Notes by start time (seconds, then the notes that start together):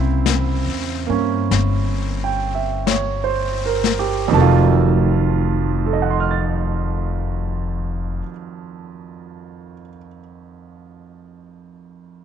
Already playing: C2 C#3 A#3 C4 E4 C5 E5
0.26 brush sweep, snare, hi-hat pedal
0.66 E2
1.07 G2 A#3 C#4
1.51 G1, brush sweep, snare
2.24 G5
2.55 E5
2.86 C#5, brush sweep, snare, hi-hat pedal
3.24 C5
3.66 A#4
3.84 snare
3.99 G4
4.28 F2 D#3
4.33 F1 F#3 A5
4.38 A3 F4
5.86 A4
5.93 D#5
6.02 F#5
6.10 C6
6.20 F6
6.31 A6